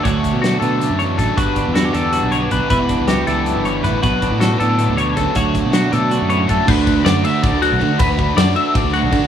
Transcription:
<<
  \new Staff \with { instrumentName = "Clean electric guitar" } { \time 7/8 \key d \major \tempo 4 = 158 cis''4 fis'8 a'4 cis''8 a'8 | b'4 fis'8 a'4 cis''8 b'8 | b'4 fis'8 a'4 cis''8 b'8 | b'4 fis'8 a'4 cis''8 a'8 |
cis''4 fis'8 a'4 cis''8 a'8 | b'4 d''8 e''8 d''8 fis'4 | b'4 d''8 e''8 d''8 fis'4 | }
  \new Staff \with { instrumentName = "Clean electric guitar" } { \time 7/8 \key d \major << { <d a cis' fis'>4. b16 r4. r16 | fis'8 d'8 e'16 g'16 d'8 fis'8 b16 d'16 b8 | e'16 fis'16 d'8 g'8 d'2 | fis'8 d'8 a'8 b16 d'4.~ d'16 |
fis'4 r4 fis'8 b16 cis'16 a8 | r2. r8 | r2. r8 | } \\ { d,4. d8 d,8 e,8 fis,8 | g,4. d4 d4 | e,4. e8 fis,8 g,8 a,8 | b,4. d8 a,8 b,8 cis8 |
d,4. d4 a,4 | r2. r8 | r2. r8 | } >> }
  \new Staff \with { instrumentName = "Overdriven electric guitar" } { \time 7/8 \key d \major <d fis a d'>4 <d fis a d'>8 <fis a d'>4. <d fis a d'>8 | <g, d g b d'>4 <g, d g b d'>8 <g b d'>4. <d g b d'>8 | <e g b e'>4 <e g b e'>8 <g b e'>4. <e g b e'>8 | <b, fis b d'>4 <b, fis b d'>8 <fis b d'>4. <b, fis b d'>8 |
<d fis a d'>4 <d fis a d'>8 <fis a d'>4. <d fis a d'>8 | <d a d' fis'>8 <a d' fis'>8 <d a d' fis'>8 <a d' fis'>4. <d a d' fis'>8 | <d a d' fis'>8 <a d' fis'>8 <d a d' fis'>8 <a d' fis'>4. <d a d' fis'>8 | }
  \new Staff \with { instrumentName = "Fingered electric bass" } { \clef bass \time 7/8 \key d \major d,8. b,8. b,8. fis,8. a,,16 r16 | g,,8. e,8. e,8. b,,8. b,,16 r16 | e,,8. cis,8. cis,8. g,,8. g,,16 r16 | b,,8. a,8. a,8. d,8. d,16 r16 |
d,8. b,8. b,8. fis,8. fis,16 r16 | d,4 fis,8 r8. d,8 b,,16 d16 r16 | d,4 fis,8 r8. d,8 b,,16 d16 r16 | }
  \new DrumStaff \with { instrumentName = "Drums" } \drummode { \time 7/8 <hh bd>8 <hh bd>8 <hh sn>8 hh8 hh8 hh8 <hh bd>8 | <hh bd>8 <hh bd>8 <hh sn>8 hh8 hh8 hh8 <hh bd>8 | <hh bd>8 <hh bd>8 <hh sn>8 hh8 hh8 <hh sn>8 <hh bd sn>8 | <hh bd>8 <hh bd>8 <hh sn>8 hh8 hh8 hh8 <hh bd>8 |
<hh bd>8 <hh bd>8 <hh sn>8 hh8 hh8 hh8 <hh bd>8 | <cymc bd>8 <bd cymr>8 <cymr sn>8 cymr8 <bd cymr sn>8 <cymr sn>8 cymr8 | <bd cymr>8 <bd cymr>8 <cymr sn>8 cymr8 <bd cymr>8 <cymr sn>8 <bd cymr>8 | }
>>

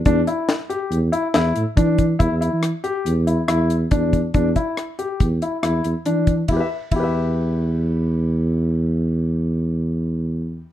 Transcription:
<<
  \new Staff \with { instrumentName = "Grand piano" } { \time 5/4 \key e \minor \tempo 4 = 140 d'8 e'4 g'4 e'8 e'4 d'4 | e'8 e'4 g'4 e'8 e'4 d'4 | d'8 e'4 g'4 e'8 e'4 d'4 | <e' g' b' e''>8 r8 <e' g' b' e''>1~ |
<e' g' b' e''>1~ <e' g' b' e''>4 | }
  \new Staff \with { instrumentName = "Tuba" } { \clef bass \time 5/4 \key e \minor e,8 r4. e,8 r8 e,8 a,16 r16 e4 | e,16 e,8 e8 r8. e,4 e,4 e,4 | e,8 r4. e,8 r8 e,8 e,16 r16 e4 | e,16 r8. e,1~ |
e,1~ e,4 | }
  \new DrumStaff \with { instrumentName = "Drums" } \drummode { \time 5/4 <hh bd>8 hh8 <hh sn>8 hh8 hh8 hh8 <hh sn>8 hh8 <hh bd>8 <hh bd>8 | <hh bd>8 hh8 <hh ss>8 hh8 hh8 hh8 <hh ss>8 hh8 <hh bd>8 <hh bd>8 | <hh bd>8 <hh bd>8 <hh ss>8 hh8 <hh bd>8 hh8 <hh ss>8 hh8 hh8 <hh bd>8 | <bd cymr>4 <bd cymr>4 r4 r4 r4 |
r4 r4 r4 r4 r4 | }
>>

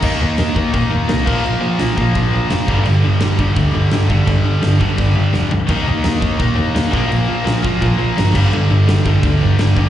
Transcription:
<<
  \new Staff \with { instrumentName = "Distorted electric guitar" } { \clef bass \time 4/4 \key g \minor \tempo 4 = 170 <ees bes ees'>2 <ees bes ees'>4. <bes, f bes>8~ | <bes, f bes>4. <bes, f bes>2 <g, d g>8~ | <g, d g>4. <g, d g>2 <g, d g>8~ | <g, d g>4. <g, d g>2 r8 |
<ees bes ees'>2 <ees bes ees'>4. <bes, f bes>8~ | <bes, f bes>4. <bes, f bes>2 <g, d g>8~ | <g, d g>4. <g, d g>2 <g, d g>8 | }
  \new Staff \with { instrumentName = "Overdriven electric guitar" } { \clef bass \time 4/4 \key g \minor <ees bes ees'>8 <ees bes>8 <ees bes>8 <ees bes>8 <ees bes>8 <ees bes>8 <ees bes>8 <bes, f bes>8 | <bes, f>8 <bes, f>8 <bes, f>8 <bes, f>8 <bes, f>8 <bes, f>8 <bes, f>8 <g, d g>8 | <g, d>8 <g, d>8 <g, d>8 <g, d>8 <g, d>8 <g, d>8 <g, d>8 <g, d>8 | <g, d>8 <g, d>8 <g, d>8 <g, d>8 <g, d>8 <g, d>8 <g, d>8 <g, d>8 |
<ees bes ees'>8 <ees bes>8 <ees bes>8 <ees bes>8 <ees bes>8 <ees bes>8 <ees bes>8 <bes, f bes>8 | <bes, f>8 <bes, f>8 <bes, f>8 <bes, f>8 <bes, f>8 <bes, f>8 <bes, f>8 <g, d g>8 | <g, d>8 <g, d>8 <g, d>8 <g, d>8 <g, d>8 <g, d>8 <g, d>8 <g, d>8 | }
  \new Staff \with { instrumentName = "Double bass" } { \clef bass \time 4/4 \key g \minor ees,8 ees,8 ees,8 ees,8 bes,8 ees,8 c,8 bes,,8 | bes,,4 bes,,8 bes,,8 bes,,8 bes,,8 f,,8 g,,8 | g,,8 g,,8 g,,8 g,,8 d,8 g,,8 g,,8 g,8 | g,,4 g,,8 g,,8 g,,8 g,,8 f,,8 f,,8 |
ees,8 ees,8 ees,8 ees,8 bes,8 ees,8 ees,8 bes,,8 | bes,,4 bes,,8 bes,,8 bes,,8 bes,,8 g,,8 g,,8 | g,,8 g,,8 g,,8 g,,8 d,8 g,,8 g,,8 g,8 | }
  \new DrumStaff \with { instrumentName = "Drums" } \drummode { \time 4/4 <cymc bd>4 <cymc sn>8 bd8 <cymc bd>4 <cymc sn>8 <cymc bd>8 | cymc4 <cymc sn>8 bd8 <cymc bd>4 <cymc sn>8 bd8 | cymc4 <cymc sn>8 bd8 <cymc bd>4 <cymc sn>8 bd8 | <cymc bd>4 <cymc sn>8 bd8 <cymc bd>4 sn8 tomfh8 |
<cymc bd>4 <cymc sn>8 bd8 <cymc bd>4 <cymc sn>8 bd8 | cymc4 <cymc sn>8 bd8 <cymc bd>4 <cymc sn>8 <cymc bd>8 | cymc4 <cymc sn>8 bd8 <cymc bd>4 <cymc sn>8 bd8 | }
>>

